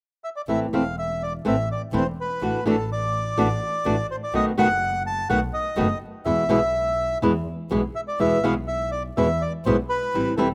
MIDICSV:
0, 0, Header, 1, 4, 480
1, 0, Start_track
1, 0, Tempo, 483481
1, 475, Time_signature, 4, 2, 24, 8
1, 10465, End_track
2, 0, Start_track
2, 0, Title_t, "Bandoneon"
2, 0, Program_c, 0, 23
2, 240, Note_on_c, 0, 76, 50
2, 293, Note_off_c, 0, 76, 0
2, 360, Note_on_c, 0, 74, 54
2, 413, Note_off_c, 0, 74, 0
2, 486, Note_on_c, 0, 76, 59
2, 593, Note_off_c, 0, 76, 0
2, 733, Note_on_c, 0, 77, 52
2, 950, Note_off_c, 0, 77, 0
2, 979, Note_on_c, 0, 76, 58
2, 1216, Note_off_c, 0, 76, 0
2, 1220, Note_on_c, 0, 74, 58
2, 1323, Note_off_c, 0, 74, 0
2, 1466, Note_on_c, 0, 76, 59
2, 1678, Note_off_c, 0, 76, 0
2, 1704, Note_on_c, 0, 74, 51
2, 1807, Note_off_c, 0, 74, 0
2, 1951, Note_on_c, 0, 72, 60
2, 2053, Note_off_c, 0, 72, 0
2, 2192, Note_on_c, 0, 71, 58
2, 2624, Note_off_c, 0, 71, 0
2, 2667, Note_on_c, 0, 69, 58
2, 2877, Note_off_c, 0, 69, 0
2, 2902, Note_on_c, 0, 74, 71
2, 4038, Note_off_c, 0, 74, 0
2, 4081, Note_on_c, 0, 72, 58
2, 4132, Note_off_c, 0, 72, 0
2, 4206, Note_on_c, 0, 74, 61
2, 4307, Note_off_c, 0, 74, 0
2, 4316, Note_on_c, 0, 75, 74
2, 4421, Note_off_c, 0, 75, 0
2, 4553, Note_on_c, 0, 78, 72
2, 4991, Note_off_c, 0, 78, 0
2, 5030, Note_on_c, 0, 81, 82
2, 5246, Note_off_c, 0, 81, 0
2, 5257, Note_on_c, 0, 78, 68
2, 5364, Note_off_c, 0, 78, 0
2, 5497, Note_on_c, 0, 75, 60
2, 5940, Note_off_c, 0, 75, 0
2, 6208, Note_on_c, 0, 76, 78
2, 7131, Note_off_c, 0, 76, 0
2, 7897, Note_on_c, 0, 76, 58
2, 7952, Note_off_c, 0, 76, 0
2, 8021, Note_on_c, 0, 74, 57
2, 8133, Note_off_c, 0, 74, 0
2, 8143, Note_on_c, 0, 76, 76
2, 8370, Note_on_c, 0, 77, 62
2, 8390, Note_off_c, 0, 76, 0
2, 8481, Note_off_c, 0, 77, 0
2, 8614, Note_on_c, 0, 76, 69
2, 8844, Note_off_c, 0, 76, 0
2, 8852, Note_on_c, 0, 74, 62
2, 8964, Note_off_c, 0, 74, 0
2, 9106, Note_on_c, 0, 76, 65
2, 9350, Note_on_c, 0, 74, 60
2, 9357, Note_off_c, 0, 76, 0
2, 9458, Note_off_c, 0, 74, 0
2, 9588, Note_on_c, 0, 72, 59
2, 9697, Note_off_c, 0, 72, 0
2, 9820, Note_on_c, 0, 71, 67
2, 10270, Note_off_c, 0, 71, 0
2, 10295, Note_on_c, 0, 69, 52
2, 10406, Note_off_c, 0, 69, 0
2, 10465, End_track
3, 0, Start_track
3, 0, Title_t, "Nylon-string guitar"
3, 0, Program_c, 1, 24
3, 477, Note_on_c, 1, 52, 42
3, 485, Note_on_c, 1, 57, 48
3, 488, Note_on_c, 1, 60, 46
3, 489, Note_on_c, 1, 64, 50
3, 646, Note_off_c, 1, 52, 0
3, 650, Note_off_c, 1, 57, 0
3, 651, Note_off_c, 1, 60, 0
3, 652, Note_off_c, 1, 64, 0
3, 724, Note_on_c, 1, 52, 60
3, 730, Note_on_c, 1, 57, 57
3, 732, Note_on_c, 1, 60, 56
3, 735, Note_on_c, 1, 64, 55
3, 810, Note_off_c, 1, 52, 0
3, 813, Note_off_c, 1, 57, 0
3, 814, Note_off_c, 1, 60, 0
3, 816, Note_off_c, 1, 64, 0
3, 1438, Note_on_c, 1, 52, 60
3, 1443, Note_on_c, 1, 57, 61
3, 1448, Note_on_c, 1, 60, 60
3, 1454, Note_on_c, 1, 64, 59
3, 1529, Note_off_c, 1, 52, 0
3, 1531, Note_off_c, 1, 57, 0
3, 1534, Note_off_c, 1, 60, 0
3, 1537, Note_off_c, 1, 64, 0
3, 1916, Note_on_c, 1, 52, 57
3, 1920, Note_on_c, 1, 57, 56
3, 1926, Note_on_c, 1, 60, 58
3, 1926, Note_on_c, 1, 64, 68
3, 2008, Note_off_c, 1, 52, 0
3, 2010, Note_off_c, 1, 57, 0
3, 2013, Note_off_c, 1, 60, 0
3, 2013, Note_off_c, 1, 64, 0
3, 2398, Note_on_c, 1, 52, 44
3, 2405, Note_on_c, 1, 57, 45
3, 2408, Note_on_c, 1, 62, 44
3, 2413, Note_on_c, 1, 66, 53
3, 2568, Note_off_c, 1, 52, 0
3, 2572, Note_off_c, 1, 57, 0
3, 2574, Note_off_c, 1, 62, 0
3, 2576, Note_off_c, 1, 66, 0
3, 2637, Note_on_c, 1, 52, 60
3, 2647, Note_on_c, 1, 57, 63
3, 2649, Note_on_c, 1, 62, 64
3, 2653, Note_on_c, 1, 66, 63
3, 2728, Note_off_c, 1, 52, 0
3, 2733, Note_off_c, 1, 57, 0
3, 2734, Note_off_c, 1, 62, 0
3, 2736, Note_off_c, 1, 66, 0
3, 3350, Note_on_c, 1, 52, 64
3, 3351, Note_on_c, 1, 57, 65
3, 3359, Note_on_c, 1, 62, 62
3, 3362, Note_on_c, 1, 66, 68
3, 3441, Note_off_c, 1, 52, 0
3, 3442, Note_off_c, 1, 57, 0
3, 3445, Note_off_c, 1, 62, 0
3, 3447, Note_off_c, 1, 66, 0
3, 3824, Note_on_c, 1, 52, 60
3, 3832, Note_on_c, 1, 57, 62
3, 3832, Note_on_c, 1, 62, 66
3, 3835, Note_on_c, 1, 66, 69
3, 3915, Note_off_c, 1, 52, 0
3, 3919, Note_off_c, 1, 57, 0
3, 3919, Note_off_c, 1, 62, 0
3, 3920, Note_off_c, 1, 66, 0
3, 4306, Note_on_c, 1, 47, 49
3, 4307, Note_on_c, 1, 51, 46
3, 4308, Note_on_c, 1, 57, 54
3, 4316, Note_on_c, 1, 59, 50
3, 4319, Note_on_c, 1, 66, 56
3, 4472, Note_off_c, 1, 47, 0
3, 4472, Note_off_c, 1, 51, 0
3, 4473, Note_off_c, 1, 57, 0
3, 4477, Note_off_c, 1, 59, 0
3, 4479, Note_off_c, 1, 66, 0
3, 4542, Note_on_c, 1, 47, 57
3, 4545, Note_on_c, 1, 51, 71
3, 4550, Note_on_c, 1, 57, 64
3, 4551, Note_on_c, 1, 59, 70
3, 4554, Note_on_c, 1, 66, 74
3, 4630, Note_off_c, 1, 47, 0
3, 4632, Note_off_c, 1, 51, 0
3, 4634, Note_off_c, 1, 57, 0
3, 4635, Note_off_c, 1, 59, 0
3, 4636, Note_off_c, 1, 66, 0
3, 5257, Note_on_c, 1, 47, 53
3, 5260, Note_on_c, 1, 51, 57
3, 5262, Note_on_c, 1, 57, 60
3, 5267, Note_on_c, 1, 59, 55
3, 5269, Note_on_c, 1, 66, 65
3, 5345, Note_off_c, 1, 47, 0
3, 5347, Note_off_c, 1, 51, 0
3, 5348, Note_off_c, 1, 57, 0
3, 5350, Note_off_c, 1, 59, 0
3, 5351, Note_off_c, 1, 66, 0
3, 5722, Note_on_c, 1, 47, 57
3, 5728, Note_on_c, 1, 51, 57
3, 5733, Note_on_c, 1, 59, 59
3, 5735, Note_on_c, 1, 57, 61
3, 5737, Note_on_c, 1, 66, 62
3, 5817, Note_off_c, 1, 47, 0
3, 5820, Note_off_c, 1, 51, 0
3, 5822, Note_off_c, 1, 59, 0
3, 5823, Note_off_c, 1, 57, 0
3, 5824, Note_off_c, 1, 66, 0
3, 6209, Note_on_c, 1, 47, 40
3, 6211, Note_on_c, 1, 52, 44
3, 6215, Note_on_c, 1, 56, 49
3, 6220, Note_on_c, 1, 59, 51
3, 6223, Note_on_c, 1, 64, 48
3, 6377, Note_off_c, 1, 47, 0
3, 6378, Note_off_c, 1, 52, 0
3, 6381, Note_off_c, 1, 56, 0
3, 6383, Note_off_c, 1, 59, 0
3, 6384, Note_off_c, 1, 64, 0
3, 6443, Note_on_c, 1, 47, 58
3, 6446, Note_on_c, 1, 52, 63
3, 6455, Note_on_c, 1, 56, 69
3, 6457, Note_on_c, 1, 59, 60
3, 6457, Note_on_c, 1, 64, 59
3, 6535, Note_off_c, 1, 47, 0
3, 6537, Note_off_c, 1, 52, 0
3, 6541, Note_off_c, 1, 56, 0
3, 6542, Note_off_c, 1, 59, 0
3, 6542, Note_off_c, 1, 64, 0
3, 7170, Note_on_c, 1, 47, 50
3, 7171, Note_on_c, 1, 52, 56
3, 7177, Note_on_c, 1, 56, 58
3, 7179, Note_on_c, 1, 59, 60
3, 7180, Note_on_c, 1, 64, 64
3, 7261, Note_off_c, 1, 47, 0
3, 7261, Note_off_c, 1, 52, 0
3, 7264, Note_off_c, 1, 56, 0
3, 7265, Note_off_c, 1, 59, 0
3, 7266, Note_off_c, 1, 64, 0
3, 7651, Note_on_c, 1, 47, 53
3, 7653, Note_on_c, 1, 52, 53
3, 7659, Note_on_c, 1, 56, 61
3, 7662, Note_on_c, 1, 59, 56
3, 7664, Note_on_c, 1, 64, 57
3, 7744, Note_off_c, 1, 47, 0
3, 7745, Note_off_c, 1, 52, 0
3, 7748, Note_off_c, 1, 56, 0
3, 7750, Note_off_c, 1, 59, 0
3, 7751, Note_off_c, 1, 64, 0
3, 8137, Note_on_c, 1, 47, 43
3, 8141, Note_on_c, 1, 52, 42
3, 8141, Note_on_c, 1, 56, 47
3, 8147, Note_on_c, 1, 59, 46
3, 8147, Note_on_c, 1, 64, 53
3, 8308, Note_off_c, 1, 47, 0
3, 8310, Note_off_c, 1, 52, 0
3, 8310, Note_off_c, 1, 56, 0
3, 8313, Note_off_c, 1, 59, 0
3, 8313, Note_off_c, 1, 64, 0
3, 8375, Note_on_c, 1, 47, 63
3, 8379, Note_on_c, 1, 52, 56
3, 8384, Note_on_c, 1, 56, 66
3, 8388, Note_on_c, 1, 59, 64
3, 8391, Note_on_c, 1, 64, 64
3, 8468, Note_off_c, 1, 47, 0
3, 8470, Note_off_c, 1, 52, 0
3, 8473, Note_off_c, 1, 56, 0
3, 8475, Note_off_c, 1, 59, 0
3, 8476, Note_off_c, 1, 64, 0
3, 9105, Note_on_c, 1, 47, 58
3, 9107, Note_on_c, 1, 52, 57
3, 9112, Note_on_c, 1, 56, 62
3, 9113, Note_on_c, 1, 59, 61
3, 9114, Note_on_c, 1, 64, 58
3, 9197, Note_off_c, 1, 47, 0
3, 9198, Note_off_c, 1, 52, 0
3, 9200, Note_off_c, 1, 56, 0
3, 9201, Note_off_c, 1, 59, 0
3, 9202, Note_off_c, 1, 64, 0
3, 9593, Note_on_c, 1, 47, 60
3, 9594, Note_on_c, 1, 52, 58
3, 9601, Note_on_c, 1, 59, 59
3, 9602, Note_on_c, 1, 56, 54
3, 9606, Note_on_c, 1, 64, 60
3, 9682, Note_off_c, 1, 47, 0
3, 9682, Note_off_c, 1, 52, 0
3, 9686, Note_off_c, 1, 56, 0
3, 9686, Note_off_c, 1, 59, 0
3, 9688, Note_off_c, 1, 64, 0
3, 10068, Note_on_c, 1, 52, 42
3, 10074, Note_on_c, 1, 55, 54
3, 10078, Note_on_c, 1, 60, 53
3, 10081, Note_on_c, 1, 64, 48
3, 10238, Note_off_c, 1, 52, 0
3, 10240, Note_off_c, 1, 55, 0
3, 10243, Note_off_c, 1, 60, 0
3, 10244, Note_off_c, 1, 64, 0
3, 10301, Note_on_c, 1, 52, 60
3, 10307, Note_on_c, 1, 55, 64
3, 10310, Note_on_c, 1, 60, 61
3, 10314, Note_on_c, 1, 64, 69
3, 10394, Note_off_c, 1, 52, 0
3, 10398, Note_off_c, 1, 55, 0
3, 10399, Note_off_c, 1, 60, 0
3, 10401, Note_off_c, 1, 64, 0
3, 10465, End_track
4, 0, Start_track
4, 0, Title_t, "Double bass"
4, 0, Program_c, 2, 43
4, 471, Note_on_c, 2, 33, 42
4, 676, Note_off_c, 2, 33, 0
4, 712, Note_on_c, 2, 28, 60
4, 1402, Note_off_c, 2, 28, 0
4, 1437, Note_on_c, 2, 33, 70
4, 1641, Note_off_c, 2, 33, 0
4, 1914, Note_on_c, 2, 28, 65
4, 2120, Note_off_c, 2, 28, 0
4, 2394, Note_on_c, 2, 33, 43
4, 2599, Note_off_c, 2, 33, 0
4, 2633, Note_on_c, 2, 33, 64
4, 3316, Note_off_c, 2, 33, 0
4, 3354, Note_on_c, 2, 33, 80
4, 3554, Note_off_c, 2, 33, 0
4, 3824, Note_on_c, 2, 33, 69
4, 4026, Note_off_c, 2, 33, 0
4, 4301, Note_on_c, 2, 35, 45
4, 4502, Note_off_c, 2, 35, 0
4, 4538, Note_on_c, 2, 30, 64
4, 5219, Note_off_c, 2, 30, 0
4, 5248, Note_on_c, 2, 35, 72
4, 5453, Note_off_c, 2, 35, 0
4, 5731, Note_on_c, 2, 30, 68
4, 5933, Note_off_c, 2, 30, 0
4, 6210, Note_on_c, 2, 40, 45
4, 6411, Note_off_c, 2, 40, 0
4, 6443, Note_on_c, 2, 35, 57
4, 7132, Note_off_c, 2, 35, 0
4, 7160, Note_on_c, 2, 40, 70
4, 7369, Note_off_c, 2, 40, 0
4, 7648, Note_on_c, 2, 35, 62
4, 7856, Note_off_c, 2, 35, 0
4, 8138, Note_on_c, 2, 40, 44
4, 8342, Note_off_c, 2, 40, 0
4, 8373, Note_on_c, 2, 35, 64
4, 9068, Note_off_c, 2, 35, 0
4, 9099, Note_on_c, 2, 40, 75
4, 9307, Note_off_c, 2, 40, 0
4, 9583, Note_on_c, 2, 35, 68
4, 9789, Note_off_c, 2, 35, 0
4, 10064, Note_on_c, 2, 33, 45
4, 10268, Note_off_c, 2, 33, 0
4, 10300, Note_on_c, 2, 28, 61
4, 10465, Note_off_c, 2, 28, 0
4, 10465, End_track
0, 0, End_of_file